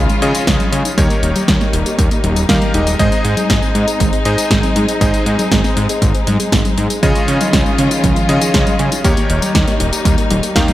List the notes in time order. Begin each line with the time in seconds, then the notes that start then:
Already playing: C#3 D#3 F3 G#3 C#4 F4 G#4 C#5 D#5
0.09 G#3, closed hi-hat, tambourine
0.22 C#3 C#4 F4 G#4 C#5 D#5, closed hi-hat
0.35 D#4, closed hi-hat, tambourine
0.47 C#2 F3, kick, snare, closed hi-hat, tambourine
0.60 G#3, closed hi-hat, tambourine, high conga
0.72 C#3 C#4, closed hi-hat
0.85 D#4, closed hi-hat, tambourine
0.98 D#2 D#3 G3 A#3 D#4 G4 A#4 C#5, kick, closed hi-hat, tambourine
1.10 A#3, closed hi-hat, tambourine
1.23 D#1 D#4, closed hi-hat
1.36 G4, closed hi-hat, tambourine, high conga
1.48 D#2 G3, kick, snare, closed hi-hat, tambourine
1.61 A#3, snare, tambourine
1.73 D#1 D#4, closed hi-hat
1.86 G4, closed hi-hat, tambourine
1.98 D#2 G3, kick, closed hi-hat, tambourine
2.11 A#3, closed hi-hat, tambourine
2.24 D#1 D#4, closed hi-hat, high conga
2.36 G4, closed hi-hat, tambourine
2.49 D#2 D#3 G3 D#4 G4 A#4 F5, kick, snare, closed hi-hat, tambourine
2.62 A#3, closed hi-hat, tambourine, high conga
2.74 D#1 G#3 D#4 G4 A#4 D#5, closed hi-hat
2.87 G4, closed hi-hat, tambourine
2.99 G#1 G#3 C4 D#4 G#4 C5 D#5, kick, closed hi-hat, tambourine
3.12 C4, closed hi-hat, tambourine
3.25 G#2 D#4, closed hi-hat
3.37 G#4, closed hi-hat, tambourine, high conga
3.50 G#1 G#3, kick, snare, closed hi-hat, tambourine
3.62 C4, tambourine
3.75 G#2 D#4, closed hi-hat
3.88 G#4, closed hi-hat, tambourine
4.00 G#1 G#3, kick, closed hi-hat, tambourine
4.13 C4, closed hi-hat, tambourine
4.25 G#2 G#3 D#4 G#4 C5 D#5, closed hi-hat
4.38 G#4, closed hi-hat, tambourine
4.51 G#1 G#3, kick, snare, closed hi-hat, tambourine
4.63 C4, closed hi-hat, tambourine, high conga
4.76 G#2 D#4, closed hi-hat
4.88 G#4, closed hi-hat, tambourine
5.01 G#1 G#3 D#4 G#4 C5 D#5, kick, closed hi-hat, tambourine
5.14 C4, closed hi-hat, tambourine
5.26 G#2 D#4, closed hi-hat
5.39 G#4, closed hi-hat, tambourine, high conga
5.51 G#1 G#3, kick, snare, closed hi-hat, tambourine
5.64 C4, snare, tambourine
5.77 G#2 D#4, closed hi-hat
5.89 G#4, closed hi-hat, tambourine
6.02 G#1 G#3, kick, closed hi-hat, tambourine
6.14 C4, closed hi-hat, tambourine
6.27 G#2 D#4, closed hi-hat, high conga
6.40 G#4, closed hi-hat, tambourine
6.52 G#1 G#3, kick, snare, closed hi-hat, tambourine
6.65 C4, closed hi-hat, tambourine, high conga
6.77 G#2 D#4, closed hi-hat
6.90 G#4, closed hi-hat, tambourine
7.03 C#2 C#3 D#3 F3 C#4 F4 G#4 C#5 D#5, kick, closed hi-hat, tambourine
7.15 G#3, closed hi-hat, tambourine
7.28 C#3 C#4, closed hi-hat
7.40 D#4, closed hi-hat, tambourine, high conga
7.53 C#2 F3, kick, snare, closed hi-hat, tambourine
7.66 G#3, tambourine
7.78 C#3 C#4, closed hi-hat
7.91 D#4, closed hi-hat, tambourine
8.04 C#2 F3, kick, closed hi-hat, tambourine
8.16 G#3, closed hi-hat, tambourine
8.29 C#3 C#4 F4 G#4 C#5 D#5, closed hi-hat
8.41 D#4, closed hi-hat, tambourine
8.54 C#2 F3, kick, snare, closed hi-hat, tambourine
8.67 G#3, closed hi-hat, tambourine, high conga
8.79 C#3 C#4, closed hi-hat
8.92 D#4, closed hi-hat, tambourine
9.04 D#2 D#3 G3 A#3 D#4 G4 A#4 C#5, kick, closed hi-hat, tambourine
9.17 A#3, closed hi-hat, tambourine
9.30 D#1 D#4, closed hi-hat
9.42 G4, closed hi-hat, tambourine, high conga
9.55 D#2 G3, kick, snare, closed hi-hat, tambourine
9.68 A#3, snare, closed hi-hat, tambourine
9.80 D#1 D#4, closed hi-hat
9.93 G4, closed hi-hat, tambourine
10.05 D#2 G3, kick, closed hi-hat, tambourine
10.18 A#3, closed hi-hat, tambourine
10.31 D#1 D#4, closed hi-hat, high conga
10.43 G4, closed hi-hat, tambourine
10.56 D#2 D#3 G3 D#4 G4 A#4 F5, kick, snare, closed hi-hat, tambourine
10.68 A#3, closed hi-hat, tambourine, high conga